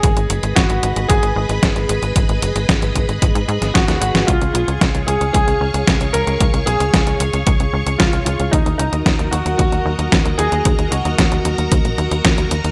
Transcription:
<<
  \new Staff \with { instrumentName = "String machine" } { \time 4/4 \key ees \minor \tempo 4 = 113 << { <ces'' ees'' ces'''>1~ | <ces'' ees'' ces'''>1 | <des'' f'' des'''>1~ | <des'' f'' des'''>1 |
<bes' ees'' bes''>1~ | <bes' ees'' bes''>1 | } \\ { aes'1~ | aes'1~ | aes'1~ | aes'1 |
ges'1~ | ges'1 | } >> }
  \new Staff \with { instrumentName = "Grand piano" } { \time 4/4 \key ees \minor aes'4 ges'4 aes'2~ | aes'2. ges'8 ges'8 | f'8 f'4 aes'8 aes'4. bes'8~ | bes'8 aes'2~ aes'8 f'8 f'8 |
ees'8 ees'4 ges'8 ges'4. aes'8~ | aes'8 ges'2. r8 | }
  \new Staff \with { instrumentName = "Analog synth bass" } { \clef bass \time 4/4 \key ees \minor aes,,16 aes,,16 ges,,16 aes,,16 aes,,16 aes,,16 aes,,16 aes,,16 aes,,16 aes,,16 aes,,16 aes,,16 aes,,16 aes,,16 aes,,16 aes,,16 | aes,,16 aes,,16 ges,,16 aes,,16 aes,,16 aes,,16 aes,,16 aes,,16 aes,,16 aes,16 aes,16 aes,,16 aes,,16 ees,16 aes,,16 aes,,16 | des,16 des,16 ces,16 des,16 des,16 des,16 des,16 des,16 des,16 des,16 des,16 des,16 des,16 des,16 des,16 des,16 | des,16 des,16 ces,16 des,16 des,16 des,16 des,16 des,16 des,16 des,16 des,16 des,16 des,16 des,16 des,16 des,16 |
ees,16 ees,16 des,16 ees,16 ees,16 ees,16 ees,16 ees,16 ees,16 ees,16 ees,16 ees,16 ees,16 ees,16 ees,16 ees,16 | ees,16 ees,16 des,16 ees,16 ees,16 ees,16 ees,16 ees,16 ees,16 bes,,16 ees,16 ees,16 ees,16 ees,16 ees,16 ees,16 | }
  \new DrumStaff \with { instrumentName = "Drums" } \drummode { \time 4/4 <hh bd>16 hh16 hh16 hh16 <hh bd sn>16 hh16 hh16 hh16 <hh bd>16 hh8 hh16 <hh bd sn>16 hh16 hh16 hh16 | <hh bd>16 hh16 hh16 hh16 <hh bd sn>16 hh16 <hh bd>16 hh16 <hh bd>16 hh16 hh16 <hh sn>16 <hh bd sn>16 <hh sn>16 hh16 <hh sn>16 | <hh bd>16 hh16 hh16 hh16 <hh bd sn>16 hh16 hh16 hh16 <hh bd>16 hh8 hh16 <hh bd sn>16 hh16 hh16 hh16 | <hh bd>16 hh16 hh16 hh16 <hh bd sn>16 hh16 hh16 hh16 <hh bd>16 hh8 hh16 <hh bd sn>16 hh16 hh16 hh16 |
<hh bd>16 hh16 hh16 hh16 <hh bd sn>16 hh16 hh16 hh16 <hh bd>16 hh8 hh16 <hh bd sn>16 hh16 hh16 hh16 | <hh bd>16 hh16 hh16 hh16 <hh bd sn>16 hh16 hh16 hh16 <hh bd>16 hh16 hh16 hh16 <hh bd sn>16 hh16 hh16 hh16 | }
>>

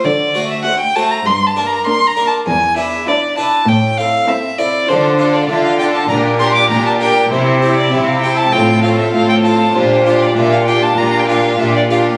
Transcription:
<<
  \new Staff \with { instrumentName = "Violin" } { \time 4/4 \key g \dorian \tempo 4 = 99 d''8. e''16 fis''16 g''16 a''16 bes''16 \tuplet 3/2 { c'''8 a''8 bes''8 c'''8 bes''8 a''8 } | aes''8 e''8 d''8 a''8 g''8 f''8 e''8 d''8 | c''8. d''16 e''16 f''16 g''16 a''16 bes''8 c'''16 d'''16 bes''16 a''16 g''8 | c''8. d''16 e''16 f''16 g''16 a''16 g''8 f''16 e''16 f''16 g''16 a''8 |
c''8. d''16 e''16 f''16 g''16 a''16 \tuplet 3/2 { bes''8 g''16 f''8. } e''16 d''16 f''8 | }
  \new Staff \with { instrumentName = "Violin section" } { \time 4/4 \key g \dorian r4 c''4 r4 bes'4 | r4 b'4 r4 a'4 | a'8 a'8 a'8 a'8 bes'8 bes'8 bes'8 bes'8 | g'8 g'8 g'8 g'8 a'8 a'8 a'8 a'8 |
g'8 g'8 g'8 g'8 g'8 g'8 g'8 g'8 | }
  \new Staff \with { instrumentName = "Violin section" } { \time 4/4 \key g \dorian r4 fis'4 r4 d'4 | r4 e'4 r4 e'4 | f'8 f'8 f'8 f'8 g'8 g'8 g'8 g'8 | e'8 e'8 e'8 e'8 f'8 f'8 f'8 f'8 |
f'8 f'8 f'8 f'8 f'8 f'8 f'8 f'8 | }
  \new Staff \with { instrumentName = "Harpsichord" } { \time 4/4 \key g \dorian r8 <a fis' c''>4 <a fis' c''>8 r8 <bes d' bes'>4 <bes d' bes'>8 | r8 <d' e' b'>4 <d' e' b'>8 r8 <c' e' a'>4 <c' e' a'>8 | r8 <d' f' a'>4 <d' f' a'>8 r8 <d' g' bes'>4 <d' g' bes'>8 | r8 <c' e' g'>4 <c' e' g'>8 r8 <c' f' a'>4 <c' f' a'>8 |
r8 <d' f' g'>4 <d' f' g'>8 r8 <d' f' g'>4 <d' f' g'>8 | }
  \new Staff \with { instrumentName = "Harpsichord" } { \clef bass \time 4/4 \key g \dorian d4 r4 g,4 r4 | e,4 r4 a,4 r4 | d4 d4 bes,4 bes,4 | c4 c4 a,4 a,4 |
bes,4 bes,4 bes,4 bes,4 | }
  \new Staff \with { instrumentName = "Viola section" } { \time 4/4 \key g \dorian r4 a4 r4 bes4 | r4 d'4 r4 c'4 | d'8 d'8 d'8 d'8 d'8 d'8 d'8 d'8 | c'8 c'8 c'8 c'8 c'8 c'8 c'8 c'8 |
d'8 d'8 d'8 d'8 d'8 d'8 d'8 d'8 | }
  \new Staff \with { instrumentName = "Cello section" } { \clef bass \time 4/4 \key g \dorian d4 r4 g,4 r4 | e,4 r4 a,4 r4 | d4 d4 bes,4 bes,4 | c4 c4 a,4 a,4 |
bes,4 bes,4 bes,4 bes,4 | }
>>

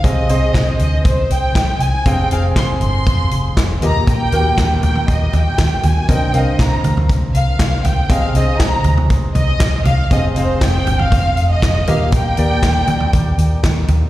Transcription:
<<
  \new Staff \with { instrumentName = "Violin section" } { \time 4/4 \key ees \major \tempo 4 = 119 ees''4. ees''8 c''8 g''4 aes''8 | g''8 f''8 c'''8 c'''4. r8 bes''8 | g''4. g''8 ees''8 g''4 aes''8 | g''8 ees''8 bes''8 r4 f''4 g''8 |
f''8 ees''8 bes''8 r4 ees''4 f''8 | ees''8 c''8 g''8. f''4 ees''8. f''8 | g''2. r4 | }
  \new Staff \with { instrumentName = "Grand piano" } { \time 4/4 \key ees \major <c' aes' ees''>8 <c' aes' c''>4. r2 | <c' aes' f''>8 <c' aes' aes''>4. r4. <bes g' ees''>8~ | <bes g' ees''>8 <bes fis' g' bes'>4. r2 | <c' bes' ees''>8 <c' bes' f''>4. r2 |
<c' aes' ees''>8 <c' aes' ees''>4. r2 | <c' aes' f''>8 <c' aes' f''>4. r4. <bes g' ees''>8~ | <bes g' ees''>8 <bes g' d''>4. r2 | }
  \new Staff \with { instrumentName = "Grand piano" } { \clef bass \time 4/4 \key ees \major c4. r2 r8 | c4. r2 bes,8~ | bes,4 r2. | g,4. r2 r8 |
c4. r2 r8 | c4. r2 bes,8~ | bes,4 r2. | }
  \new Staff \with { instrumentName = "Fingered electric bass" } { \clef bass \time 4/4 \key ees \major c,8 c,8 c,8 d,8 c,8 c,8 c,8 c,8 | f,,8 f,,8 f,,8 g,,8 f,,8 f,,8 f,,8 ees,8~ | ees,8 ees,8 ees,8 ees,8 ees,8 ees,8 ees,8 ees,8 | c,8 c,8 c,8 d,8 c,8 c,8 c,8 c,8 |
c,8 c,8 c,8 d,8 c,8 c,8 c,8 c,8 | f,,8 f,,8 f,,8 g,,8 f,,8 f,,8 f,,8 ees,8~ | ees,8 ees,8 ees,8 ees,8 ees,8 ees,8 ees,8 ees,8 | }
  \new DrumStaff \with { instrumentName = "Drums" } \drummode { \time 4/4 <hh bd>8 hh8 <hc hh bd sn>8 hh8 <hh bd>8 hh8 <hc hh bd sn>8 hh8 | <hh bd>8 hh8 <hc hh bd sn>8 hh8 <hh bd>8 hh8 <hc hh bd sn>8 hh8 | <hh bd>8 hh8 <hc hh bd sn>8 <hh tomfh>16 tomfh16 <hh bd>8 <hh tomfh>8 <hc hh bd sn>8 <hh tomfh>8 | <hh bd>8 hh8 <hc hh bd sn>8 <hh tomfh>16 tomfh16 <hh bd>8 hh8 <hc hh bd sn>8 <hh tomfh>8 |
<hh bd>8 hh8 <hc hh bd sn>8 <hh tomfh>16 tomfh16 <hh bd>8 <hh tomfh>8 <hc hh bd sn>8 <hh tomfh>8 | <hh bd>8 hh8 <hc hh bd sn>8 <hh tomfh>16 tomfh16 <hh bd>8 hh8 <hc hh bd sn>8 <hh tomfh>8 | <hh bd>8 hh8 <hc hh bd sn>8 <hh tomfh>16 tomfh16 <hh bd>8 hh8 <hc hh bd sn>8 <hh tomfh>8 | }
>>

